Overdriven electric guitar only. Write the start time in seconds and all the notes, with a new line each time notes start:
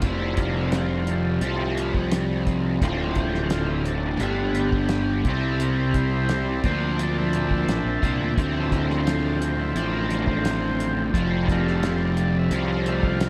0.02 F2 C3 F3 G3 C4 F4
1.41 F2 C3 F3 G3 C4 F4
2.81 D2 A2 D3 A3 C4 F4
4.20 G2 D3 G3 B3 D4 G4
5.25 C3 G3 C4 E4 G4 C5
6.64 A#2 F3 A#3 D4 F4 A#4
8.02 A#2 F3 A#3 D4 F4 A#4
8.36 D2 A2 D3 A3 C4 F4
9.75 D2 A2 D3 A3 C4 F4
11.13 F2 C3 F3 G3 C4 F4
12.51 F2 C3 F3 G3 C4
12.55 F4